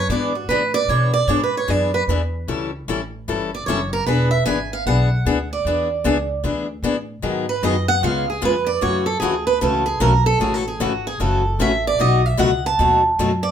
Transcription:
0.09 upright bass G#2, steel-string acoustic guitar E3 B3 D4 G#4 D5
0.35 steel-string acoustic guitar F#4
0.48 upright bass A2, steel-string acoustic guitar E3 B3 D4 G#4 B4
0.74 steel-string acoustic guitar D5
0.88 upright bass B2, steel-string acoustic guitar E3 B3 D4 G#4 C#5
1.14 steel-string acoustic guitar D5
1.28 upright bass G#2, steel-string acoustic guitar E3 B3 D4 G#4 C#5
1.43 steel-string acoustic guitar B4
1.57 steel-string acoustic guitar C#5
1.68 upright bass F#2, steel-string acoustic guitar E3 B3 D4 G#4 D5
1.94 steel-string acoustic guitar B4
2.08 upright bass E2, steel-string acoustic guitar E3 B3 D4 G#4
2.48 upright bass C#2, steel-string acoustic guitar E3 G3 C#4 E4 A4
2.88 upright bass A1, steel-string acoustic guitar E3 G3 C#4 E4 A4
3.28 upright bass G1, steel-string acoustic guitar E3 G3 C#4 E4 A4
3.55 steel-string acoustic guitar D5
3.66 upright bass F#1, steel-string acoustic guitar E3 G3 C#4 E4 A4 C#5
3.93 steel-string acoustic guitar A#4
4.06 upright bass E1, steel-string acoustic guitar E3 B3 D4 G#4 B4
4.31 steel-string acoustic guitar E5
4.46 upright bass G#1, steel-string acoustic guitar E3 B3 D4 G#4 G#5
4.73 steel-string acoustic guitar F5
4.86 upright bass B1, steel-string acoustic guitar E3 B3 D4 G#4 F#5
5.25 upright bass D2, steel-string acoustic guitar E3 B3 D4 G#4
5.53 steel-string acoustic guitar D5
5.65 upright bass E2, steel-string acoustic guitar E3 B3 D4 G#4
6.04 upright bass C#2, steel-string acoustic guitar E3 B3 D4 G#4
6.44 upright bass D2, steel-string acoustic guitar E3 B3 D4 G#4
6.83 upright bass A2, steel-string acoustic guitar E3 B3 D4 G#4
7.22 upright bass G#2, steel-string acoustic guitar D#3 F#3 B3 D#4 G#4
7.49 steel-string acoustic guitar B4
7.63 upright bass F#2, steel-string acoustic guitar D#3 F#3 B3 D#4 G#4 D#5
7.88 steel-string acoustic guitar F#5
8.02 upright bass C#2, steel-string acoustic guitar C#3 G#3 B3 F4 G#4 F5
8.30 steel-string acoustic guitar G#4
8.42 upright bass F2, steel-string acoustic guitar C#3 G#3 B3 F4 G#4 B4
8.67 steel-string acoustic guitar D5
8.81 upright bass F#2, steel-string acoustic guitar C#3 E3 A3 C#4 F#4 C#5
9.06 steel-string acoustic guitar A4
9.20 upright bass D2, steel-string acoustic guitar C#3 E3 A3 C#4 F#4 G#4
9.47 steel-string acoustic guitar B4
9.61 upright bass C#2, steel-string acoustic guitar C#3 E3 A3 C#4 F#4 A4
9.86 steel-string acoustic guitar G#4
10.00 upright bass B1, steel-string acoustic guitar C#3 E3 A3 C#4 F#4 A#4
10.26 steel-string acoustic guitar A4
10.40 upright bass A1, steel-string acoustic guitar C#3 E3 A3 C#4 F#4 G#4
10.54 steel-string acoustic guitar A4
10.68 steel-string acoustic guitar G#4
10.80 upright bass G#1, steel-string acoustic guitar C#3 E3 A3 C#4 F#4
11.07 steel-string acoustic guitar G#4
11.20 upright bass F#1, steel-string acoustic guitar C#3 E3 A3 C#4 F#4 A4
11.59 upright bass A1, steel-string acoustic guitar C#3 E3 A3 C#4 F#4 E5
11.87 steel-string acoustic guitar D5
11.99 upright bass B1, steel-string acoustic guitar B2 F#3 A3 D#4 F#4 D#5
12.26 steel-string acoustic guitar E5
12.37 upright bass C#2, steel-string acoustic guitar B2 F#3 A3 D#4 F#4 F#5
12.66 steel-string acoustic guitar A5
12.79 upright bass D#2, steel-string acoustic guitar B2 F#3 A3 D#4 F#4
13.19 upright bass F#2, steel-string acoustic guitar B2 F#3 A3 D#4 F#4
13.43 steel-string acoustic guitar D5

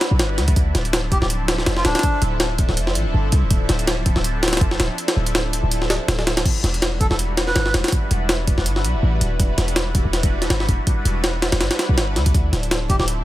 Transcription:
Already playing: analog synth pad G3 D4 E4 F#4 B4
0.01 snare, closed hi-hat
0.11 808-style bass B1
0.19 808-style bass G1, snare, closed hi-hat
0.38 808-style bass D2, snare, closed hi-hat
0.48 kick, closed hi-hat
0.56 analog synth pad F3 C4 D4 E4 A4, kick, closed hi-hat
0.75 808-style bass D1, snare, closed hi-hat
0.85 closed hi-hat
0.93 snare, closed hi-hat
1.12 analog synth pad F3 C4 D4 E4 A4, melodica G4, kick, closed hi-hat
1.22 808-style bass D1, melodica G4, snare
1.30 closed hi-hat
1.48 snare, closed hi-hat
1.58 snare
1.66 808-style bass F1, snare, closed hi-hat
1.77 melodica F4, snare
1.85 808-style bass D1, melodica D4, snare, closed hi-hat
1.95 snare, closed hi-hat
1.99 snare, closed hi-hat
2.03 analog synth pad F3 C4 D4 E4 A4, kick, closed hi-hat
2.22 808-style bass D1, closed hi-hat
2.40 snare, closed hi-hat
2.58 analog synth pad F3 C4 D4 E4 A4, kick, closed hi-hat
2.69 808-style bass D1, snare
2.77 808-style bass F1, closed hi-hat
2.87 snare
2.95 808-style bass A1, closed hi-hat
3.06 808-style bass D1
3.14 808-style bass G1
3.32 808-style bass C2, closed hi-hat
3.43 808-style bass D1
3.51 analog synth pad F3 C4 D4 E4 A4, kick, closed hi-hat
3.69 808-style bass D1, snare, closed hi-hat
3.79 closed hi-hat
3.87 snare, closed hi-hat
4.06 analog synth pad F3 C4 D4 E4 A4, kick, closed hi-hat
4.16 808-style bass D1, snare
4.24 closed hi-hat
4.43 snare, closed hi-hat
4.48 snare, closed hi-hat
4.53 snare, closed hi-hat
4.57 snare, closed hi-hat
4.61 808-style bass F1, kick, closed hi-hat
4.71 snare
4.80 808-style bass D1, snare, closed hi-hat
4.98 analog synth pad F3 C4 D4 E4 A4, closed hi-hat
5.08 snare, closed hi-hat
5.16 808-style bass D1
5.26 closed hi-hat
5.35 snare, closed hi-hat
5.53 analog synth pad F3 C4 D4 E4 A4, closed hi-hat
5.63 808-style bass D1
5.71 closed hi-hat
5.82 snare
5.90 snare, closed hi-hat
6.08 808-style bass D1, snare, closed hi-hat
6.19 snare
6.27 snare, closed hi-hat
6.37 snare, closed hi-hat
6.45 analog synth pad G3 D4 E4 F#4 B4, kick, closed hi-hat, crash
6.64 808-style bass E1, snare, closed hi-hat
6.74 closed hi-hat
6.82 snare, closed hi-hat
7.00 analog synth pad G3 D4 E4 F#4 B4, melodica A4, kick, closed hi-hat
7.10 808-style bass E1, melodica A4, snare
7.19 closed hi-hat
7.37 snare, closed hi-hat
7.47 melodica B4, snare
7.56 808-style bass G1, snare, closed hi-hat
7.66 snare
7.74 808-style bass E1, snare, closed hi-hat
7.84 snare, closed hi-hat
7.88 snare, closed hi-hat
7.92 analog synth pad G3 D4 E4 F#4 B4, kick, closed hi-hat
8.11 808-style bass E1, closed hi-hat
8.29 snare, closed hi-hat
8.47 analog synth pad G3 D4 E4 F#4 B4, kick, closed hi-hat
8.58 808-style bass E1, snare
8.66 808-style bass G1, closed hi-hat
8.76 snare
8.84 808-style bass B1, closed hi-hat
8.94 808-style bass E1
9.03 808-style bass A1
9.21 808-style bass D1, closed hi-hat
9.31 808-style bass E1
9.40 analog synth pad G3 D4 E4 F#4 B4, kick, closed hi-hat
9.58 808-style bass E1, snare, closed hi-hat
9.68 closed hi-hat
9.76 snare, closed hi-hat
9.95 analog synth pad G3 D4 E4 F#4 B4, kick, closed hi-hat
10.05 808-style bass E1
10.13 snare, closed hi-hat
10.23 kick, closed hi-hat
10.42 snare, closed hi-hat
10.50 808-style bass G1, snare, closed hi-hat
10.60 snare
10.69 808-style bass E1, kick, closed hi-hat
10.87 analog synth pad G3 D4 E4 F#4 B4, kick, closed hi-hat
11.05 808-style bass E1, closed hi-hat
11.24 snare, closed hi-hat
11.42 analog synth pad G3 D4 E4 F#4 B4, snare, closed hi-hat
11.52 808-style bass E1, snare, closed hi-hat
11.61 808-style bass G1, snare, closed hi-hat
11.71 snare, closed hi-hat
11.79 snare, closed hi-hat
11.89 808-style bass B1
11.97 808-style bass G1, snare, closed hi-hat
12.16 808-style bass D2, snare, closed hi-hat
12.26 kick, closed hi-hat
12.34 analog synth pad F3 C4 D4 E4 A4, kick, closed hi-hat
12.53 808-style bass D1, snare, closed hi-hat
12.63 closed hi-hat
12.71 snare, closed hi-hat
12.90 analog synth pad F3 C4 D4 E4 A4, melodica G4, kick, closed hi-hat
12.99 808-style bass D1, melodica G4, snare
13.08 closed hi-hat

